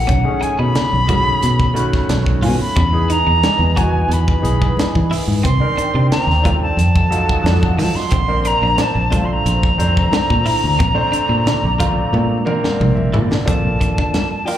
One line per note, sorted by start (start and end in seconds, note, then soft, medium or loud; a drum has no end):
0.00 0.44 F#5 medium
0.07 0.23 B1 loud
0.07 0.27 C#4 medium
0.07 kick loud
0.07 closed hi-hat medium
0.07 muted conga soft
0.23 0.95 D#3 medium
0.23 0.96 A3 medium
0.23 0.96 C#4 medium
0.23 0.96 G#4 medium
0.41 0.51 D#4 medium
0.41 0.60 G#5 medium
0.41 muted fingered electric bass stroke soft
0.41 closed hi-hat soft
0.59 0.73 B2 medium
0.59 0.78 D#4 medium
0.59 2.16 B5 loud
0.75 muted fingered electric bass stroke soft
0.75 snare medium
0.75 closed hi-hat medium
0.75 low conga medium
0.93 1.34 B1 medium
1.07 1.65 D#3 medium
1.07 1.65 A3 medium
1.07 1.66 C#4 medium
1.07 1.28 F#4 medium
1.07 1.65 G#4 medium
1.07 kick medium
1.07 closed hi-hat medium
1.07 muted conga soft
1.07 high conga loud
1.07 low conga medium
1.42 1.99 B2 medium
1.42 closed hi-hat medium
1.60 kick medium
1.74 2.74 D#3 medium
1.74 2.74 A3 medium
1.74 2.74 C#4 medium
1.74 2.74 F#4 medium
1.74 closed hi-hat medium
1.74 muted conga soft
1.93 kick medium
1.93 snare soft
2.09 2.44 B1 medium
2.09 snare loud
2.09 closed hi-hat medium
2.09 high conga medium
2.26 kick medium
2.42 2.57 B2 medium
2.42 2.62 F4 medium
2.42 2.59 G#5 medium
2.42 open hi-hat medium
2.42 high conga medium
2.60 3.13 B5 loud
2.60 muted fingered electric bass stroke soft
2.76 3.19 E2 medium
2.76 2.95 C#4 medium
2.76 5.42 B4 medium
2.76 5.42 D#5 medium
2.76 5.41 G#5 medium
2.76 kick loud
2.76 closed hi-hat medium
2.76 muted conga soft
2.92 3.63 E3 medium
2.92 3.64 B3 medium
2.92 3.64 D#4 medium
2.92 3.64 G#4 medium
3.10 3.20 D#4 medium
3.10 3.79 A#5 loud
3.10 closed hi-hat medium
3.27 3.41 E2 medium
3.27 3.46 D#4 medium
3.43 snare loud
3.43 closed hi-hat medium
3.43 high conga medium
3.59 4.01 E2 loud
3.76 4.34 E3 medium
3.76 4.34 B3 medium
3.76 4.34 D#4 medium
3.76 3.96 F#4 medium
3.76 4.34 F#4 medium
3.76 4.14 G#5 medium
3.76 kick medium
3.76 closed hi-hat medium
3.76 muted conga soft
3.76 high conga medium
4.08 4.37 E2 medium
4.08 closed hi-hat medium
4.13 5.12 B5 medium
4.28 kick medium
4.42 4.72 B1 medium
4.42 5.42 E3 medium
4.42 5.42 B3 medium
4.42 5.42 D#4 medium
4.42 5.42 G#4 medium
4.42 closed hi-hat medium
4.42 muted conga soft
4.62 kick medium
4.77 snare loud
4.77 closed hi-hat medium
4.77 high conga medium
4.95 5.09 E3 medium
4.95 kick medium
5.11 5.30 E4 medium
5.11 open hi-hat medium
5.28 5.41 G#2 medium
5.43 5.59 C2 loud
5.43 5.63 C4 medium
5.43 6.77 C5 medium
5.43 6.77 D5 medium
5.43 6.78 G5 medium
5.43 6.08 C6 loud
5.43 kick loud
5.43 closed hi-hat medium
5.43 muted conga soft
5.60 6.31 D#3 medium
5.60 6.31 C4 medium
5.60 6.32 D4 medium
5.60 6.32 A#4 medium
5.77 5.87 D4 medium
5.77 muted fingered electric bass stroke soft
5.77 closed hi-hat medium
5.94 6.08 C3 medium
5.94 6.14 D4 medium
6.10 6.58 A#5 loud
6.10 muted fingered electric bass stroke soft
6.10 snare loud
6.10 closed hi-hat medium
6.10 low conga medium
6.27 6.69 D#2 medium
6.27 snare soft
6.42 6.77 D#3 medium
6.42 6.77 C4 medium
6.42 6.78 D4 medium
6.42 6.65 F4 medium
6.42 6.78 A4 medium
6.42 kick medium
6.42 closed hi-hat medium
6.42 muted conga soft
6.42 high conga medium
6.42 low conga medium
6.62 7.75 A5 medium
6.77 7.33 F2 medium
6.77 8.11 F4 medium
6.77 8.11 A4 medium
6.77 8.11 D#5 medium
6.77 8.11 F#5 medium
6.77 closed hi-hat medium
6.77 muted conga soft
6.96 kick medium
7.10 8.10 F#3 medium
7.10 8.10 D#4 medium
7.10 8.10 F4 medium
7.10 8.10 A4 medium
7.10 closed hi-hat medium
7.10 muted conga soft
7.29 kick medium
7.44 7.79 F2 medium
7.44 snare loud
7.44 closed hi-hat medium
7.44 high conga medium
7.63 kick medium
7.78 7.92 F3 medium
7.78 7.98 D#4 medium
7.78 7.97 A5 medium
7.78 open hi-hat medium
7.78 high conga medium
7.95 8.48 C6 loud
7.95 muted fingered electric bass stroke soft
7.95 snare soft
8.11 8.54 A#1 loud
8.11 8.31 C4 medium
8.11 13.44 D4 medium
8.11 10.78 C5 medium
8.11 kick loud
8.11 closed hi-hat medium
8.11 muted conga soft
8.28 8.99 A#3 medium
8.28 8.99 C4 medium
8.28 8.99 D4 medium
8.28 8.99 A#4 medium
8.45 8.55 D4 medium
8.45 8.83 A#5 loud
8.45 closed hi-hat medium
8.62 8.76 A#1 medium
8.62 8.82 D4 medium
8.78 9.26 A5 medium
8.78 snare loud
8.78 closed hi-hat medium
8.78 high conga medium
8.95 9.37 A#1 loud
9.11 9.68 A3 medium
9.11 9.68 C4 medium
9.11 9.68 D4 medium
9.11 9.69 F4 medium
9.11 9.31 F4 medium
9.11 kick medium
9.11 closed hi-hat medium
9.11 muted conga soft
9.11 high conga medium
9.25 9.34 C6 medium
9.33 12.82 A#5 loud
9.45 9.74 A#1 loud
9.45 closed hi-hat medium
9.45 muted conga soft
9.63 kick medium
9.78 10.07 F2 medium
9.78 10.78 A3 medium
9.78 10.78 C4 medium
9.78 10.78 D4 medium
9.78 10.78 C5 medium
9.78 closed hi-hat medium
9.78 muted conga soft
9.97 kick medium
10.12 snare loud
10.12 closed hi-hat medium
10.12 high conga medium
10.30 10.44 A#2 medium
10.30 kick medium
10.46 10.65 E4 medium
10.46 open hi-hat medium
10.64 10.77 D2 medium
10.79 10.94 A#1 loud
10.79 10.98 C4 medium
10.79 13.46 D5 medium
10.79 kick loud
10.79 closed hi-hat medium
10.79 muted conga soft
10.94 11.66 A3 medium
10.94 11.66 C4 medium
10.94 11.66 D4 medium
10.94 11.67 C5 loud
11.12 11.22 D4 medium
11.12 muted fingered electric bass stroke soft
11.12 closed hi-hat medium
11.29 11.43 A#2 medium
11.29 11.49 D4 medium
11.46 muted fingered electric bass stroke soft
11.46 snare loud
11.46 closed hi-hat medium
11.46 low conga medium
11.63 12.05 A#1 medium
11.78 12.36 A3 medium
11.78 12.36 C4 medium
11.78 12.37 D4 medium
11.78 11.99 F4 medium
11.78 12.37 F4 medium
11.78 kick medium
11.78 closed hi-hat medium
11.78 muted conga soft
11.78 low conga medium
12.13 12.69 A#2 loud
12.13 high tom medium
12.13 muted conga soft
12.45 13.44 A#3 loud
12.45 13.45 C4 medium
12.45 13.44 D4 medium
12.45 13.45 A#4 loud
12.45 mid tom medium
12.45 muted conga soft
12.64 snare medium
12.64 high conga medium
12.79 13.15 A#1 medium
12.79 12.95 F5 medium
12.79 mid tom medium
12.79 high conga medium
12.95 13.11 E5 medium
12.95 high conga medium
13.13 13.28 A#2 medium
13.13 13.33 E4 medium
13.13 13.44 D5 medium
13.13 floor tom medium
13.13 low conga medium
13.31 muted fingered electric bass stroke soft
13.31 snare medium
13.31 low conga medium
13.46 13.62 A#1 loud
13.46 14.31 F3 medium
13.46 14.31 A#3 medium
13.46 13.67 C4 medium
13.46 14.31 D4 medium
13.46 14.32 A4 medium
13.46 14.47 A5 medium
13.46 kick loud
13.46 closed hi-hat medium
13.46 muted conga soft
13.64 13.92 A#1 medium
13.81 13.91 D4 medium
13.81 kick medium
13.81 closed hi-hat medium
13.98 14.18 D4 medium
13.98 kick medium
14.14 snare medium
14.14 closed hi-hat medium
14.14 high conga medium
14.45 14.58 F3 medium
14.45 14.58 A#3 medium
14.45 14.58 D4 medium
14.45 14.58 F4 medium
14.45 14.58 A#4 medium
14.45 14.58 G5 medium
14.45 open hi-hat medium